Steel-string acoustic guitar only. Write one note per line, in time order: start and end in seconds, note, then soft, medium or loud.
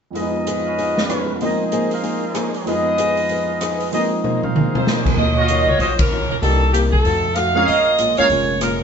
0.14 0.35 F3 soft
0.14 0.36 D#4 soft
0.14 0.36 G#4 soft
0.14 0.36 B4 soft
0.46 0.67 F3 medium
0.46 0.67 D#4 medium
0.46 0.67 G#4 medium
0.46 0.68 B4 medium
0.78 0.99 F3 soft
0.78 0.99 D#4 soft
0.78 0.99 G#4 soft
0.78 0.99 B4 soft
1.09 1.30 F3 medium
1.09 1.30 D#4 soft
1.09 1.30 G#4 soft
1.09 1.31 B4 medium
1.41 1.61 A#3 soft
1.41 1.62 D#4 soft
1.41 1.62 G#4 soft
1.41 1.62 C5 soft
1.72 1.92 A#3 medium
1.72 1.93 D#4 medium
1.72 1.93 G#4 medium
1.72 1.93 C5 medium
2.02 2.24 A#3 soft
2.02 2.24 D#4 soft
2.02 2.24 G#4 soft
2.02 2.25 C5 soft
2.34 2.55 A#3 medium
2.34 2.55 D#4 medium
2.34 2.55 G#4 medium
2.34 2.56 C5 medium
2.66 2.87 F3 soft
2.66 2.87 D#4 soft
2.66 2.87 G#4 soft
2.66 2.88 B4 soft
2.98 3.19 F3 medium
2.98 3.19 D#4 medium
2.98 3.19 G#4 medium
2.98 3.19 B4 medium
3.29 3.50 F3 soft
3.29 3.50 D#4 soft
3.29 3.51 G#4 soft
3.29 3.51 B4 soft
3.61 3.81 F3 medium
3.61 3.82 D#4 medium
3.61 3.82 G#4 medium
3.61 3.82 B4 medium
3.92 4.13 A#3 soft
3.92 4.13 D#4 soft
3.92 4.13 G#4 soft
3.92 4.14 C5 soft
4.24 4.44 A#3 medium
4.24 4.44 D#4 medium
4.24 4.44 G#4 medium
4.24 4.44 C5 medium
4.56 4.76 A#3 soft
4.56 4.76 D#4 soft
4.56 4.76 G#4 soft
4.56 4.76 C5 soft
4.87 5.07 A#3 soft
4.87 5.07 D#4 soft
4.87 5.07 G#4 medium
4.87 5.07 C5 medium
5.18 5.38 D#3 soft
5.18 5.38 F#3 soft
5.18 5.39 C#4 soft
5.18 5.39 F4 soft
5.50 5.70 D#3 medium
5.50 5.70 F#3 medium
5.50 5.70 C#4 medium
5.50 5.70 F4 medium
5.81 6.01 D#3 soft
5.81 6.01 F#3 soft
5.81 6.01 C#4 soft
5.81 6.02 F4 soft
6.11 6.32 D#3 soft
6.11 6.32 F#3 soft
6.11 6.32 C#4 medium
6.11 6.33 F4 medium
6.42 6.63 C3 soft
6.42 6.63 A#3 soft
6.42 6.63 D#4 soft
6.42 6.64 G4 soft
6.74 6.94 C3 medium
6.74 6.94 A#3 medium
6.74 6.94 D#4 medium
6.74 6.95 G4 medium
7.06 7.26 F3 soft
7.06 7.26 A3 soft
7.06 7.26 D#4 soft
7.06 7.27 F#4 medium
7.36 7.56 F3 soft
7.36 7.57 A3 soft
7.36 7.57 D#4 medium
7.36 7.57 F#4 medium
7.67 7.87 A#2 soft
7.67 7.88 G#3 soft
7.67 7.88 C#4 soft
7.67 7.88 F4 soft
7.99 8.19 A#2 medium
7.99 8.19 G#3 medium
7.99 8.19 C#4 medium
7.99 8.20 F4 medium
8.30 8.50 A#2 soft
8.30 8.51 G#3 soft
8.30 8.51 C#4 soft
8.30 8.52 F4 soft
8.62 8.82 A#2 medium
8.62 8.82 G#3 medium
8.62 8.82 C#4 soft
8.62 8.83 F4 soft